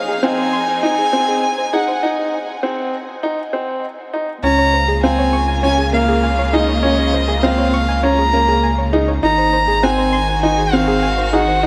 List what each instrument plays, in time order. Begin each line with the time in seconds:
Already playing: string section F3 A#3 D#4 G#4, violin F5
0.08 synth arpeggio sound G#4
0.13 string section C4
0.23 grand piano C4, synth arpeggio sound F5, violin G#5
0.38 synth arpeggio sound C5
0.53 synth arpeggio sound C6
0.68 synth arpeggio sound G#5
0.83 grand piano D#4, violin G#5
0.98 synth arpeggio sound G#4
1.13 grand piano C4, synth arpeggio sound C4
1.28 synth arpeggio sound G#4
1.43 synth arpeggio sound G#5
1.58 synth arpeggio sound C5
1.73 grand piano D#4, synth arpeggio sound G#4, violin F#5
1.88 synth arpeggio sound C5
2.03 grand piano D#4
2.63 grand piano C4
3.23 grand piano D#4
3.53 grand piano C4
4.13 grand piano D#4
4.43 sub bass C#2, string section C#3, grand piano C#4, violin A#5
4.58 string section F4, synth arpeggio sound C#5
4.73 string section A#3, synth arpeggio sound C5
4.88 synth arpeggio sound G#4
5.03 grand piano C4, synth arpeggio sound F5, violin G#5
5.18 synth arpeggio sound C#5
5.33 synth arpeggio sound C#6
5.48 synth arpeggio sound G#5
5.63 grand piano C#4, violin G#5
5.78 synth arpeggio sound G#4
5.93 grand piano A#3, synth arpeggio sound C#4, violin F5
6.08 synth arpeggio sound G#4
6.23 synth arpeggio sound G#5
6.38 synth arpeggio sound C#5
6.53 grand piano D#4, synth arpeggio sound G#4, violin D#5
6.68 synth arpeggio sound C#5
6.83 grand piano C#4
6.98 synth arpeggio sound C#5
7.13 synth arpeggio sound C5
7.28 synth arpeggio sound G#4
7.43 grand piano C4, synth arpeggio sound F5, violin F5
7.58 synth arpeggio sound C#5
7.73 synth arpeggio sound C#6
7.88 synth arpeggio sound G#5
8.03 grand piano C#4, violin A#5
8.18 synth arpeggio sound G#4
8.33 grand piano A#3, synth arpeggio sound C#4
8.48 synth arpeggio sound G#4
8.63 synth arpeggio sound G#5
8.78 synth arpeggio sound C#5
8.93 grand piano D#4, synth arpeggio sound G#4
9.08 synth arpeggio sound C#5
9.23 sub bass G#1, string section D#3, grand piano D#4, violin A#5
9.38 synth arpeggio sound C5
9.51 string section C5, synth arpeggio sound C5
9.68 synth arpeggio sound G#4
9.83 grand piano C4, synth arpeggio sound F#5, violin G#5
9.98 synth arpeggio sound C5
10.13 synth arpeggio sound C6
10.23 string section F#4
10.28 synth arpeggio sound G#5
10.43 grand piano D#4, violin G#5
10.58 synth arpeggio sound G#4
10.73 synth arpeggio sound C4, grand piano C4, violin F5
10.88 synth arpeggio sound G#4
11.03 synth arpeggio sound G#5
11.18 synth arpeggio sound C5
11.33 grand piano D#4, synth arpeggio sound G#4, violin F#5
11.48 synth arpeggio sound C5
11.63 grand piano D#4